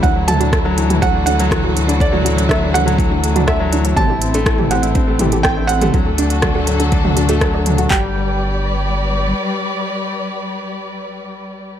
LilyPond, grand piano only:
\new Staff \with { instrumentName = "Grand piano" } { \time 4/4 \key g \major \tempo 4 = 122 e16 fis16 a16 d'16 a16 fis16 e16 fis16 a16 d'16 a16 fis16 e16 fis16 a16 d'16 | a16 fis16 e16 fis16 a16 d'16 a16 fis16 e16 fis16 a16 d'16 a16 fis16 e16 fis16 | c'16 e'16 c'16 a16 e16 a16 c'16 e'16 c'16 a16 e16 a16 c'16 e'16 c'16 a16 | fis16 a16 d'16 fis'16 d'16 a16 fis16 a16 d'16 fis'16 d'16 a16 fis16 a16 d'16 fis'16 |
g8 r2. r8 | r1 | }